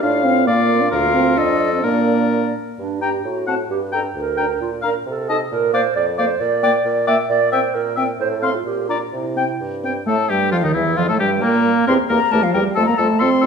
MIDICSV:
0, 0, Header, 1, 6, 480
1, 0, Start_track
1, 0, Tempo, 448766
1, 30, Time_signature, 2, 2, 24, 8
1, 1470, Tempo, 465477
1, 3870, Tempo, 449438
1, 8670, Tempo, 469116
1, 10590, Tempo, 448096
1, 14222, End_track
2, 0, Start_track
2, 0, Title_t, "Flute"
2, 0, Program_c, 0, 73
2, 27, Note_on_c, 0, 77, 59
2, 503, Note_off_c, 0, 77, 0
2, 510, Note_on_c, 0, 77, 60
2, 978, Note_off_c, 0, 77, 0
2, 996, Note_on_c, 0, 77, 73
2, 1472, Note_on_c, 0, 75, 64
2, 1488, Note_off_c, 0, 77, 0
2, 1951, Note_off_c, 0, 75, 0
2, 1957, Note_on_c, 0, 74, 55
2, 2672, Note_off_c, 0, 74, 0
2, 3159, Note_on_c, 0, 82, 36
2, 3271, Note_off_c, 0, 82, 0
2, 3638, Note_on_c, 0, 81, 34
2, 3746, Note_off_c, 0, 81, 0
2, 4114, Note_on_c, 0, 82, 39
2, 4226, Note_off_c, 0, 82, 0
2, 4595, Note_on_c, 0, 82, 36
2, 4707, Note_off_c, 0, 82, 0
2, 5079, Note_on_c, 0, 82, 40
2, 5192, Note_off_c, 0, 82, 0
2, 5562, Note_on_c, 0, 81, 45
2, 5673, Note_off_c, 0, 81, 0
2, 6038, Note_on_c, 0, 77, 45
2, 6148, Note_off_c, 0, 77, 0
2, 6513, Note_on_c, 0, 77, 46
2, 6625, Note_off_c, 0, 77, 0
2, 6993, Note_on_c, 0, 79, 55
2, 7103, Note_off_c, 0, 79, 0
2, 7467, Note_on_c, 0, 79, 57
2, 7579, Note_off_c, 0, 79, 0
2, 7948, Note_on_c, 0, 79, 55
2, 8060, Note_off_c, 0, 79, 0
2, 8429, Note_on_c, 0, 79, 51
2, 8540, Note_off_c, 0, 79, 0
2, 8910, Note_on_c, 0, 84, 51
2, 9015, Note_off_c, 0, 84, 0
2, 9381, Note_on_c, 0, 82, 36
2, 9492, Note_off_c, 0, 82, 0
2, 9866, Note_on_c, 0, 79, 36
2, 9980, Note_off_c, 0, 79, 0
2, 10355, Note_on_c, 0, 79, 33
2, 10465, Note_off_c, 0, 79, 0
2, 10588, Note_on_c, 0, 81, 57
2, 10815, Note_off_c, 0, 81, 0
2, 10835, Note_on_c, 0, 79, 60
2, 11066, Note_off_c, 0, 79, 0
2, 11072, Note_on_c, 0, 77, 57
2, 11188, Note_on_c, 0, 75, 44
2, 11204, Note_off_c, 0, 77, 0
2, 11295, Note_off_c, 0, 75, 0
2, 11301, Note_on_c, 0, 76, 49
2, 11536, Note_off_c, 0, 76, 0
2, 11543, Note_on_c, 0, 77, 66
2, 11601, Note_off_c, 0, 77, 0
2, 11672, Note_on_c, 0, 81, 58
2, 11778, Note_off_c, 0, 81, 0
2, 11785, Note_on_c, 0, 79, 53
2, 12028, Note_on_c, 0, 82, 62
2, 12044, Note_off_c, 0, 79, 0
2, 12514, Note_off_c, 0, 82, 0
2, 12522, Note_on_c, 0, 84, 73
2, 12586, Note_off_c, 0, 84, 0
2, 12755, Note_on_c, 0, 82, 73
2, 12990, Note_on_c, 0, 81, 71
2, 13006, Note_off_c, 0, 82, 0
2, 13115, Note_on_c, 0, 77, 56
2, 13131, Note_off_c, 0, 81, 0
2, 13220, Note_off_c, 0, 77, 0
2, 13227, Note_on_c, 0, 79, 55
2, 13291, Note_off_c, 0, 79, 0
2, 13458, Note_on_c, 0, 81, 84
2, 13568, Note_off_c, 0, 81, 0
2, 13574, Note_on_c, 0, 82, 68
2, 13697, Note_on_c, 0, 81, 75
2, 13713, Note_off_c, 0, 82, 0
2, 13931, Note_on_c, 0, 84, 74
2, 13947, Note_off_c, 0, 81, 0
2, 14222, Note_off_c, 0, 84, 0
2, 14222, End_track
3, 0, Start_track
3, 0, Title_t, "Oboe"
3, 0, Program_c, 1, 68
3, 29, Note_on_c, 1, 77, 50
3, 498, Note_off_c, 1, 77, 0
3, 502, Note_on_c, 1, 74, 70
3, 969, Note_off_c, 1, 74, 0
3, 975, Note_on_c, 1, 70, 60
3, 1471, Note_on_c, 1, 69, 70
3, 1486, Note_off_c, 1, 70, 0
3, 1947, Note_on_c, 1, 70, 52
3, 1962, Note_off_c, 1, 69, 0
3, 2681, Note_off_c, 1, 70, 0
3, 3166, Note_on_c, 1, 79, 41
3, 3248, Note_off_c, 1, 79, 0
3, 3632, Note_on_c, 1, 78, 37
3, 3715, Note_off_c, 1, 78, 0
3, 4104, Note_on_c, 1, 79, 43
3, 4191, Note_off_c, 1, 79, 0
3, 4584, Note_on_c, 1, 79, 35
3, 4672, Note_off_c, 1, 79, 0
3, 5064, Note_on_c, 1, 77, 45
3, 5154, Note_off_c, 1, 77, 0
3, 5568, Note_on_c, 1, 75, 47
3, 5649, Note_off_c, 1, 75, 0
3, 6044, Note_on_c, 1, 74, 53
3, 6125, Note_off_c, 1, 74, 0
3, 6517, Note_on_c, 1, 74, 47
3, 6599, Note_off_c, 1, 74, 0
3, 6999, Note_on_c, 1, 74, 51
3, 7079, Note_off_c, 1, 74, 0
3, 7471, Note_on_c, 1, 74, 53
3, 7554, Note_off_c, 1, 74, 0
3, 7951, Note_on_c, 1, 76, 55
3, 8034, Note_off_c, 1, 76, 0
3, 8417, Note_on_c, 1, 76, 46
3, 8505, Note_off_c, 1, 76, 0
3, 8901, Note_on_c, 1, 77, 50
3, 8983, Note_off_c, 1, 77, 0
3, 9389, Note_on_c, 1, 74, 42
3, 9470, Note_off_c, 1, 74, 0
3, 9872, Note_on_c, 1, 79, 37
3, 9956, Note_off_c, 1, 79, 0
3, 10362, Note_on_c, 1, 79, 34
3, 10442, Note_off_c, 1, 79, 0
3, 10592, Note_on_c, 1, 69, 59
3, 10826, Note_on_c, 1, 67, 61
3, 10842, Note_off_c, 1, 69, 0
3, 11056, Note_off_c, 1, 67, 0
3, 11062, Note_on_c, 1, 65, 59
3, 11119, Note_off_c, 1, 65, 0
3, 11187, Note_on_c, 1, 63, 52
3, 11297, Note_off_c, 1, 63, 0
3, 11304, Note_on_c, 1, 64, 56
3, 11553, Note_on_c, 1, 65, 63
3, 11569, Note_off_c, 1, 64, 0
3, 11668, Note_off_c, 1, 65, 0
3, 11674, Note_on_c, 1, 69, 58
3, 11788, Note_off_c, 1, 69, 0
3, 11794, Note_on_c, 1, 67, 58
3, 11903, Note_off_c, 1, 67, 0
3, 12030, Note_on_c, 1, 58, 72
3, 12505, Note_off_c, 1, 58, 0
3, 12515, Note_on_c, 1, 70, 44
3, 12624, Note_off_c, 1, 70, 0
3, 12751, Note_on_c, 1, 70, 56
3, 12860, Note_off_c, 1, 70, 0
3, 12995, Note_on_c, 1, 70, 56
3, 13104, Note_off_c, 1, 70, 0
3, 13229, Note_on_c, 1, 70, 45
3, 13339, Note_off_c, 1, 70, 0
3, 13459, Note_on_c, 1, 69, 60
3, 13570, Note_off_c, 1, 69, 0
3, 13699, Note_on_c, 1, 69, 57
3, 13809, Note_off_c, 1, 69, 0
3, 13933, Note_on_c, 1, 69, 64
3, 14044, Note_off_c, 1, 69, 0
3, 14167, Note_on_c, 1, 69, 55
3, 14222, Note_off_c, 1, 69, 0
3, 14222, End_track
4, 0, Start_track
4, 0, Title_t, "Clarinet"
4, 0, Program_c, 2, 71
4, 38, Note_on_c, 2, 65, 54
4, 509, Note_off_c, 2, 65, 0
4, 515, Note_on_c, 2, 65, 75
4, 1955, Note_on_c, 2, 62, 55
4, 1971, Note_off_c, 2, 65, 0
4, 2685, Note_off_c, 2, 62, 0
4, 2920, Note_on_c, 2, 62, 46
4, 3152, Note_on_c, 2, 67, 42
4, 3168, Note_off_c, 2, 62, 0
4, 3395, Note_off_c, 2, 67, 0
4, 3401, Note_on_c, 2, 66, 43
4, 3626, Note_off_c, 2, 66, 0
4, 3632, Note_on_c, 2, 66, 44
4, 3738, Note_off_c, 2, 66, 0
4, 3874, Note_on_c, 2, 67, 52
4, 3982, Note_off_c, 2, 67, 0
4, 4117, Note_on_c, 2, 69, 43
4, 4225, Note_off_c, 2, 69, 0
4, 4361, Note_on_c, 2, 70, 54
4, 4830, Note_off_c, 2, 70, 0
4, 4842, Note_on_c, 2, 65, 46
4, 4950, Note_off_c, 2, 65, 0
4, 5092, Note_on_c, 2, 70, 54
4, 5198, Note_off_c, 2, 70, 0
4, 5344, Note_on_c, 2, 69, 55
4, 5568, Note_off_c, 2, 69, 0
4, 5581, Note_on_c, 2, 69, 55
4, 5684, Note_off_c, 2, 69, 0
4, 5807, Note_on_c, 2, 70, 67
4, 6037, Note_off_c, 2, 70, 0
4, 6046, Note_on_c, 2, 72, 62
4, 6275, Note_off_c, 2, 72, 0
4, 6282, Note_on_c, 2, 74, 61
4, 6388, Note_off_c, 2, 74, 0
4, 6523, Note_on_c, 2, 72, 65
4, 6755, Note_on_c, 2, 74, 59
4, 6772, Note_off_c, 2, 72, 0
4, 7464, Note_off_c, 2, 74, 0
4, 7471, Note_on_c, 2, 76, 69
4, 7578, Note_off_c, 2, 76, 0
4, 7710, Note_on_c, 2, 74, 78
4, 7940, Note_off_c, 2, 74, 0
4, 7946, Note_on_c, 2, 72, 61
4, 8189, Note_on_c, 2, 70, 67
4, 8205, Note_off_c, 2, 72, 0
4, 8429, Note_off_c, 2, 70, 0
4, 8672, Note_on_c, 2, 72, 68
4, 8778, Note_off_c, 2, 72, 0
4, 8788, Note_on_c, 2, 69, 57
4, 9033, Note_on_c, 2, 65, 48
4, 9048, Note_off_c, 2, 69, 0
4, 9141, Note_off_c, 2, 65, 0
4, 9147, Note_on_c, 2, 67, 54
4, 9374, Note_off_c, 2, 67, 0
4, 9380, Note_on_c, 2, 65, 50
4, 9489, Note_off_c, 2, 65, 0
4, 9614, Note_on_c, 2, 64, 42
4, 10097, Note_off_c, 2, 64, 0
4, 10587, Note_on_c, 2, 57, 61
4, 10697, Note_off_c, 2, 57, 0
4, 10829, Note_on_c, 2, 55, 53
4, 11075, Note_on_c, 2, 53, 59
4, 11091, Note_off_c, 2, 55, 0
4, 11193, Note_off_c, 2, 53, 0
4, 11200, Note_on_c, 2, 51, 50
4, 11309, Note_off_c, 2, 51, 0
4, 11316, Note_on_c, 2, 52, 53
4, 11425, Note_off_c, 2, 52, 0
4, 11566, Note_on_c, 2, 53, 55
4, 11619, Note_off_c, 2, 53, 0
4, 11682, Note_on_c, 2, 57, 54
4, 11799, Note_off_c, 2, 57, 0
4, 11809, Note_on_c, 2, 55, 52
4, 12039, Note_off_c, 2, 55, 0
4, 12051, Note_on_c, 2, 58, 61
4, 12516, Note_off_c, 2, 58, 0
4, 12526, Note_on_c, 2, 67, 53
4, 12632, Note_off_c, 2, 67, 0
4, 12757, Note_on_c, 2, 67, 50
4, 12865, Note_off_c, 2, 67, 0
4, 13004, Note_on_c, 2, 67, 53
4, 13111, Note_off_c, 2, 67, 0
4, 13242, Note_on_c, 2, 67, 51
4, 13349, Note_off_c, 2, 67, 0
4, 13479, Note_on_c, 2, 65, 51
4, 13586, Note_off_c, 2, 65, 0
4, 13708, Note_on_c, 2, 65, 51
4, 13816, Note_off_c, 2, 65, 0
4, 13947, Note_on_c, 2, 65, 56
4, 14055, Note_off_c, 2, 65, 0
4, 14181, Note_on_c, 2, 65, 57
4, 14222, Note_off_c, 2, 65, 0
4, 14222, End_track
5, 0, Start_track
5, 0, Title_t, "French horn"
5, 0, Program_c, 3, 60
5, 30, Note_on_c, 3, 62, 88
5, 261, Note_on_c, 3, 60, 82
5, 277, Note_off_c, 3, 62, 0
5, 501, Note_on_c, 3, 58, 87
5, 517, Note_off_c, 3, 60, 0
5, 869, Note_on_c, 3, 62, 67
5, 885, Note_off_c, 3, 58, 0
5, 987, Note_off_c, 3, 62, 0
5, 1227, Note_on_c, 3, 60, 81
5, 1482, Note_on_c, 3, 62, 71
5, 1498, Note_off_c, 3, 60, 0
5, 1830, Note_off_c, 3, 62, 0
5, 1837, Note_on_c, 3, 60, 58
5, 1942, Note_off_c, 3, 60, 0
5, 1949, Note_on_c, 3, 58, 80
5, 2667, Note_off_c, 3, 58, 0
5, 3171, Note_on_c, 3, 62, 35
5, 3251, Note_off_c, 3, 62, 0
5, 3636, Note_on_c, 3, 60, 35
5, 3718, Note_off_c, 3, 60, 0
5, 4117, Note_on_c, 3, 62, 34
5, 4200, Note_off_c, 3, 62, 0
5, 4596, Note_on_c, 3, 62, 37
5, 4680, Note_off_c, 3, 62, 0
5, 5080, Note_on_c, 3, 62, 42
5, 5165, Note_off_c, 3, 62, 0
5, 5568, Note_on_c, 3, 63, 39
5, 5649, Note_off_c, 3, 63, 0
5, 6042, Note_on_c, 3, 58, 40
5, 6124, Note_off_c, 3, 58, 0
5, 6524, Note_on_c, 3, 58, 52
5, 6604, Note_off_c, 3, 58, 0
5, 6997, Note_on_c, 3, 58, 53
5, 7078, Note_off_c, 3, 58, 0
5, 7480, Note_on_c, 3, 58, 49
5, 7560, Note_off_c, 3, 58, 0
5, 7958, Note_on_c, 3, 60, 47
5, 8038, Note_off_c, 3, 60, 0
5, 8431, Note_on_c, 3, 60, 52
5, 8513, Note_off_c, 3, 60, 0
5, 8903, Note_on_c, 3, 60, 49
5, 8984, Note_off_c, 3, 60, 0
5, 9377, Note_on_c, 3, 62, 42
5, 9462, Note_off_c, 3, 62, 0
5, 9862, Note_on_c, 3, 60, 37
5, 9949, Note_off_c, 3, 60, 0
5, 10350, Note_on_c, 3, 60, 39
5, 10434, Note_off_c, 3, 60, 0
5, 10582, Note_on_c, 3, 57, 70
5, 10693, Note_off_c, 3, 57, 0
5, 10830, Note_on_c, 3, 55, 64
5, 11070, Note_on_c, 3, 53, 65
5, 11086, Note_off_c, 3, 55, 0
5, 11188, Note_on_c, 3, 51, 56
5, 11204, Note_off_c, 3, 53, 0
5, 11316, Note_on_c, 3, 52, 63
5, 11332, Note_off_c, 3, 51, 0
5, 11551, Note_off_c, 3, 52, 0
5, 11557, Note_on_c, 3, 53, 67
5, 11673, Note_off_c, 3, 53, 0
5, 11679, Note_on_c, 3, 57, 62
5, 11792, Note_on_c, 3, 55, 55
5, 11808, Note_off_c, 3, 57, 0
5, 12028, Note_off_c, 3, 55, 0
5, 12034, Note_on_c, 3, 58, 71
5, 12507, Note_off_c, 3, 58, 0
5, 12516, Note_on_c, 3, 60, 84
5, 12625, Note_off_c, 3, 60, 0
5, 12763, Note_on_c, 3, 58, 65
5, 12870, Note_off_c, 3, 58, 0
5, 12994, Note_on_c, 3, 57, 84
5, 13117, Note_on_c, 3, 53, 76
5, 13133, Note_off_c, 3, 57, 0
5, 13237, Note_on_c, 3, 55, 67
5, 13253, Note_off_c, 3, 53, 0
5, 13476, Note_off_c, 3, 55, 0
5, 13484, Note_on_c, 3, 57, 86
5, 13597, Note_off_c, 3, 57, 0
5, 13604, Note_on_c, 3, 58, 77
5, 13656, Note_off_c, 3, 58, 0
5, 13728, Note_on_c, 3, 57, 82
5, 13960, Note_on_c, 3, 60, 98
5, 13976, Note_off_c, 3, 57, 0
5, 14222, Note_off_c, 3, 60, 0
5, 14222, End_track
6, 0, Start_track
6, 0, Title_t, "Bassoon"
6, 0, Program_c, 4, 70
6, 32, Note_on_c, 4, 45, 68
6, 499, Note_off_c, 4, 45, 0
6, 511, Note_on_c, 4, 46, 61
6, 978, Note_off_c, 4, 46, 0
6, 988, Note_on_c, 4, 38, 76
6, 1475, Note_on_c, 4, 41, 64
6, 1490, Note_off_c, 4, 38, 0
6, 1954, Note_on_c, 4, 46, 60
6, 1969, Note_off_c, 4, 41, 0
6, 2685, Note_off_c, 4, 46, 0
6, 2930, Note_on_c, 4, 43, 40
6, 3324, Note_off_c, 4, 43, 0
6, 3402, Note_on_c, 4, 45, 38
6, 3793, Note_off_c, 4, 45, 0
6, 3866, Note_on_c, 4, 43, 40
6, 4271, Note_off_c, 4, 43, 0
6, 4348, Note_on_c, 4, 38, 44
6, 4753, Note_off_c, 4, 38, 0
6, 4837, Note_on_c, 4, 46, 43
6, 5241, Note_off_c, 4, 46, 0
6, 5325, Note_on_c, 4, 48, 44
6, 5722, Note_off_c, 4, 48, 0
6, 5806, Note_on_c, 4, 46, 55
6, 6200, Note_off_c, 4, 46, 0
6, 6278, Note_on_c, 4, 41, 52
6, 6674, Note_off_c, 4, 41, 0
6, 6758, Note_on_c, 4, 46, 59
6, 7152, Note_off_c, 4, 46, 0
6, 7232, Note_on_c, 4, 46, 55
6, 7630, Note_off_c, 4, 46, 0
6, 7707, Note_on_c, 4, 46, 57
6, 8107, Note_off_c, 4, 46, 0
6, 8193, Note_on_c, 4, 46, 57
6, 8591, Note_off_c, 4, 46, 0
6, 8670, Note_on_c, 4, 45, 57
6, 9058, Note_off_c, 4, 45, 0
6, 9134, Note_on_c, 4, 46, 47
6, 9539, Note_off_c, 4, 46, 0
6, 9623, Note_on_c, 4, 48, 45
6, 10030, Note_off_c, 4, 48, 0
6, 10112, Note_on_c, 4, 43, 42
6, 10511, Note_off_c, 4, 43, 0
6, 10598, Note_on_c, 4, 45, 66
6, 10837, Note_on_c, 4, 43, 58
6, 10853, Note_off_c, 4, 45, 0
6, 11082, Note_on_c, 4, 41, 60
6, 11098, Note_off_c, 4, 43, 0
6, 11193, Note_off_c, 4, 41, 0
6, 11199, Note_on_c, 4, 39, 50
6, 11310, Note_off_c, 4, 39, 0
6, 11317, Note_on_c, 4, 40, 54
6, 11554, Note_off_c, 4, 40, 0
6, 11562, Note_on_c, 4, 41, 70
6, 11684, Note_on_c, 4, 45, 55
6, 11700, Note_off_c, 4, 41, 0
6, 11794, Note_off_c, 4, 45, 0
6, 11800, Note_on_c, 4, 43, 54
6, 12037, Note_on_c, 4, 46, 62
6, 12053, Note_off_c, 4, 43, 0
6, 12377, Note_off_c, 4, 46, 0
6, 12520, Note_on_c, 4, 40, 68
6, 12628, Note_off_c, 4, 40, 0
6, 12755, Note_on_c, 4, 40, 54
6, 12863, Note_off_c, 4, 40, 0
6, 13001, Note_on_c, 4, 40, 58
6, 13108, Note_off_c, 4, 40, 0
6, 13240, Note_on_c, 4, 40, 63
6, 13347, Note_off_c, 4, 40, 0
6, 13476, Note_on_c, 4, 41, 62
6, 13583, Note_off_c, 4, 41, 0
6, 13711, Note_on_c, 4, 41, 60
6, 13818, Note_off_c, 4, 41, 0
6, 13947, Note_on_c, 4, 41, 65
6, 14055, Note_off_c, 4, 41, 0
6, 14186, Note_on_c, 4, 41, 58
6, 14222, Note_off_c, 4, 41, 0
6, 14222, End_track
0, 0, End_of_file